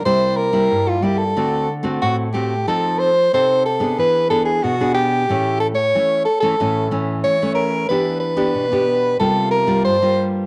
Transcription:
<<
  \new Staff \with { instrumentName = "Soprano saxophone" } { \time 4/4 \key a \phrygian \tempo 4 = 92 c''8 bes'8. f'16 g'16 a'8. r8 fis'8 g'8 | a'8 c''8 c''8 a'8 b'8 a'16 gis'16 fis'8 g'8~ | g'8 a'16 cis''8. a'16 a'8. r8 cis''8 bes'8 | b'8 b'4. a'8 bes'8 c''8. r16 | }
  \new Staff \with { instrumentName = "Nylon-string guitar" } { \time 4/4 \key a \phrygian << { <g bes e'>8. <g bes e'>8. <g bes e'>16 r16 <a c' fis'>8 r16 <a c' fis'>8. <a c' fis'>16 r16 | <c' ees' a'>8. r16 <c' ees' a'>8 r16 <b d' gis'>8. <b d' gis'>8. <b d' gis'>8. | <e a cis'>8. r16 <e a cis'>8 r16 <e a cis'>16 <e a cis'>8 <e a cis'>8. <e a cis'>8. | <b d' g'>8. <b d' g'>8 <b d' g'>8. <g bes f'>8. <g bes f'>8 <g bes f'>8. | } \\ { c4 g,4 d4 a,4 | f4 c4 e4 b,4 | a,4 e4 a,4 e4 | e4 b,4 c4 g,4 | } >> }
>>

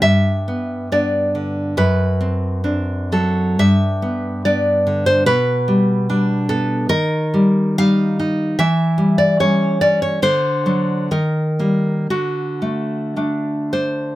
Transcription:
\new Staff \with { instrumentName = "Nylon-string guitar" } { \time 2/4 \key g \major \tempo 4 = 70 << { e''4 d''4 | b'4. a'8 | e''4 d''8. c''16 | b'4. a'8 |
\key d \phrygian bes'4 f''4 | e''8. d''16 cis''8 d''16 cis''16 | c''4 bes'4 | fis'4. c''8 | } \\ { g,8 b8 <b d'>8 d8 | fis,8 c'8 <c' d'>8 fis8 | g,8 b8 <b d'>8 d8 | b,8 g8 <g d'>8 b8 |
ees8 g8 <g ees'>8 ees'8 | e8 g8 <g cis'>8 cis'8 | d8 <fis d'>8 ees8 <g bes>8 | d8 a8 <a d'>8 d'8 | } >> }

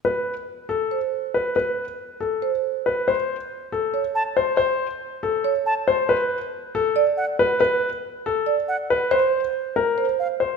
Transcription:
<<
  \new Staff \with { instrumentName = "Flute" } { \time 7/8 \key a \dorian \tempo 4 = 139 r2. r8 | r2. r8 | r2 r8 a''8 r8 | r2 r8 a''8 r8 |
r2 r8 fis''8 r8 | r2 r8 fis''8 r8 | r2 r8 f''8 r8 | }
  \new Staff \with { instrumentName = "Marimba" } { \time 7/8 \key a \dorian r2 c''8 r4 | r2 c''8 r4 | r2 cis''8 r4 | r2 cis''8 r4 |
r2 d''8 r4 | r2 d''8 r4 | c''8 r4. c''8 r4 | }
  \new Staff \with { instrumentName = "Grand piano" } { \time 7/8 \key a \dorian b'8 r4 a'8 r4 b'8 | b'8 r4 a'8 r4 b'8 | c''8 r4 a'8 r4 c''8 | c''8 r4 a'8 r4 c''8 |
b'8 r4 a'8 r4 b'8 | b'8 r4 a'8 r4 b'8 | c''8 r4 bes'8 r4 c''8 | }
>>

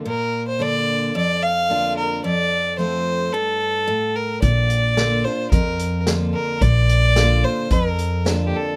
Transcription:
<<
  \new Staff \with { instrumentName = "Fiddle" } { \time 4/4 \key bes \major \tempo 4 = 110 bes'8. c''16 d''4 d''8 f''4 bes'8 | d''4 c''4 a'4. bes'8 | d''4. c''8 bes'4 r8 bes'8 | d''4. c''8 bes'4 r16. g'32 a'8 | }
  \new Staff \with { instrumentName = "Steel-string acoustic guitar" } { \time 4/4 \key bes \major << { r4 <d bes d' f'>4 r4 <d bes d' f'>4 | r4 <f a c' f'>4 r2 | r4 <d bes d' f'>8 <d' f'>8 r4 <d bes d' f'>4 | r4 <d bes d' f'>4 r4 <d bes d' f'>4 | } \\ { bes,2 f,2 | f,2 g,4 a,4 | bes,2 f,2 | bes,2 f,2 | } >> }
  \new Staff \with { instrumentName = "Upright bass" } { \clef bass \time 4/4 \key bes \major r1 | r1 | bes,,2 f,2 | bes,,2 f,2 | }
  \new DrumStaff \with { instrumentName = "Drums" } \drummode { \time 4/4 r4 r4 r4 r4 | r4 r4 r4 r4 | <hh bd>8 hh8 <hh sn>4 <hh bd>8 hh8 <hh sn>4 | <hh bd>8 hh8 <hh sn>4 <hh bd>8 hh8 <hh sn>4 | }
>>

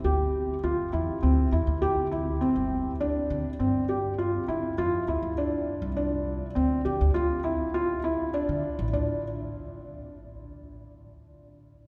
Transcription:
<<
  \new Staff \with { instrumentName = "Felt piano" } { \time 5/4 \key d \minor \tempo 4 = 101 g'4 f'8 e'8 c'8 e'8 g'8 e'8 c'4 | d'4 c'8 g'8 f'8 e'8 f'8 e'8 d'4 | d'4 c'8 g'8 f'8 e'8 f'8 e'8 d'4 | d'8 r1 r8 | }
  \new Staff \with { instrumentName = "Upright bass" } { \clef bass \time 5/4 \key d \minor d,8 r8 d,16 r16 e,16 r16 d,8 e,16 d,4. g,,8 r16 | d,8 d16 r16 g,4. d16 r16 f,8 d,16 d,8 r8 c,16~ | c,4 d,8 d16 d,16 d,8 r4. r16 d16 r16 a,,16 | d,8 r1 r8 | }
>>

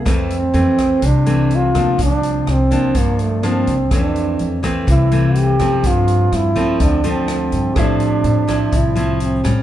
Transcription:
<<
  \new Staff \with { instrumentName = "Grand piano" } { \time 4/4 \key f \major \tempo 4 = 125 r1 | r1 | r1 | r1 |
<g' a' c'' e''>1 | }
  \new Staff \with { instrumentName = "Trombone" } { \time 4/4 \key f \major c'2 d'4 f'4 | d'4 c'4 bes8 a8 c'4 | d'4. r8 e'4 g'4 | f'4 e'4 d'8 c'8 c'4 |
d'2 e'4 c'4 | }
  \new Staff \with { instrumentName = "Nylon-string guitar" } { \time 4/4 \key f \major << { <e a c'>8 r8 <e a c'>4 r8 <e a c'>4 <f bes d'>8~ | <f bes d'>4. <f bes d'>4. <f bes d'>8 r8 | <e a c'>4. <e a c'>4 <e a c'>4 <f a c'>8~ | <f a c'>4. <f a c'>4 <f a c'>4. |
<f c' e'>4. <f c' e'>4 <f c' e'>4 <g des'>8 | } \\ { f,2 c2 | c2 g,2 | f,2 c2 | g,2 d2 |
a,2 a,2 | } >> }
  \new Staff \with { instrumentName = "Upright bass" } { \clef bass \time 4/4 \key f \major f,4 f,8 r8 c,4. d,8 | c,4 c,8 r8 g,4. c,8 | f,4 f,8 r8 c,4. ges,8 | g,4 g,8 r8 d,4. g,8 |
a,4 a,8 r8 c,4. a,8 | }
  \new DrumStaff \with { instrumentName = "Drums" } \drummode { \time 4/4 <hh bd ss>8 hh8 hh8 <hh bd ss>8 <hh bd>8 hh8 hh8 <hh bd ss>8 | <hh bd>8 hh8 <hh ss>8 <hh bd>8 <hh bd>8 hh8 <hh ss>8 <hh bd>8 | <hh bd ss>8 hh8 hh8 <hh bd ss>8 <hh bd>8 hh8 hh8 <hh bd ss>8 | <hh bd>8 hh8 <hh ss>8 <hh bd>8 <hh bd>8 hh8 <hh ss>8 <hh bd>8 |
<hh bd ss>8 hh8 hh8 <hh bd ss>8 <hh bd>8 hh8 hh8 <hh bd ss>8 | }
>>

